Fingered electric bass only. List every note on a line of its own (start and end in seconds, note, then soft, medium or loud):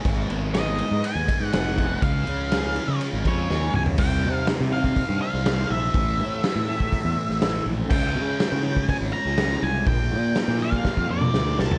0.05 0.26 G#1 loud
0.30 0.81 G#1 medium
0.91 1.01 G#2 medium
1.15 1.26 D#2 loud
1.40 1.51 G#2 medium
1.54 1.94 F1 medium
2.02 2.22 C#2 loud
2.27 2.78 C#2 medium
2.88 2.98 C#3 loud
3.13 3.23 G#1 medium
3.25 3.47 F2 medium
3.50 3.72 D#2 medium
3.74 3.96 C#2 medium
3.99 4.25 C2 loud
4.23 4.44 C3 medium
4.60 5.01 C3 loud
5.09 5.19 G2 loud
5.34 5.64 C2 medium
5.70 5.90 A#1 loud
5.94 6.20 A1 loud
6.19 6.39 A2 loud
6.55 6.96 A2 loud
7.05 7.15 E2 loud
7.29 7.60 A1 medium
7.66 7.86 A#1 loud
7.91 8.17 C#2 loud
8.15 8.36 C#3 loud
8.52 8.93 C#3 loud
9.01 9.11 G#1 loud
9.25 9.56 C#2 medium
9.62 9.83 C2 loud
9.87 10.13 A#1 loud
10.12 10.32 A#2 medium
10.48 10.89 A#2 loud
10.97 11.07 F2 medium
11.10 11.32 F2 medium
11.35 11.57 D2 medium
11.60 11.78 C2 medium